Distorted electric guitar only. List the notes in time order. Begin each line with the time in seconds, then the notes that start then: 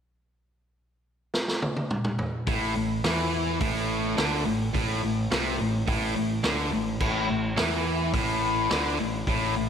2.48 A2
2.76 A2
3.04 E3
3.61 A2
4.17 D3
4.45 A2
4.74 A2
5.03 A2
5.31 C3
5.58 A2
5.87 A2
6.16 A2
6.43 D3
6.72 A2
7.01 A2
7.28 A2
7.56 E3
8.14 A2
8.71 D3
9.00 A2
9.29 A2
9.56 A2